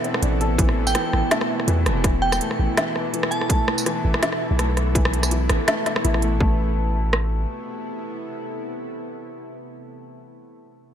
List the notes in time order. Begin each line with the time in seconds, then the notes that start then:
Already playing: B2 E3 A3 B3 E4 A4
0.04 C4, closed hi-hat
0.14 cross-stick
0.22 A1 D4, closed hi-hat
0.41 A4, closed hi-hat
0.58 A1 E3, kick, closed hi-hat
0.69 cross-stick
0.87 G5, tambourine
0.95 E3, cross-stick, closed hi-hat
1.13 A1, cross-stick
1.31 A3, snare, closed hi-hat
1.41 cross-stick
1.60 cross-stick
1.67 E2 E3, closed hi-hat
1.86 E1, cross-stick, closed hi-hat
2.04 E3, kick, cross-stick, closed hi-hat
2.22 G5
2.32 G5, cross-stick, tambourine
2.41 A3, closed hi-hat
2.51 cross-stick
2.59 A1
2.77 E3, cross-stick, snare, closed hi-hat
2.96 cross-stick
3.13 E3, closed hi-hat
3.23 cross-stick
3.31 A5, closed hi-hat
3.41 cross-stick
3.50 A3, kick, closed hi-hat
3.68 cross-stick
3.78 tambourine
3.86 E3, cross-stick, closed hi-hat
4.04 A1
4.14 cross-stick
4.23 E3, snare, closed hi-hat
4.32 cross-stick
4.50 B1
4.59 A3, cross-stick, closed hi-hat
4.77 cross-stick, closed hi-hat
4.95 E3, kick, closed hi-hat
5.05 cross-stick
5.13 closed hi-hat
5.23 cross-stick, tambourine
5.31 E3, closed hi-hat
5.49 A1, cross-stick, closed hi-hat
5.68 A3, cross-stick, snare, closed hi-hat
5.86 snare, closed hi-hat
5.96 cross-stick
6.04 A1 E4, closed hi-hat
6.14 cross-stick
6.22 A3, closed hi-hat
6.40 A1 C3 A3, kick
6.47 B3
6.53 E4
6.58 A4
7.13 cross-stick